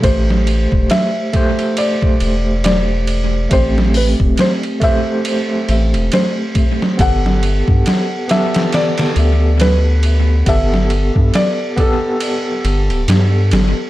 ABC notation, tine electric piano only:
X:1
M:4/4
L:1/8
Q:"Swing 16ths" 1/4=69
K:Ador
V:1 name="Tine electric piano"
[A,Gc]3 [A,Gc]4- [A,Gc] | [A,CG]3 [A,Gc]4- [A,Gc] | [B,GA]3 [B,GA]4- [B,GA] | [B,GA]3 [B,GA]4- [B,GA] |]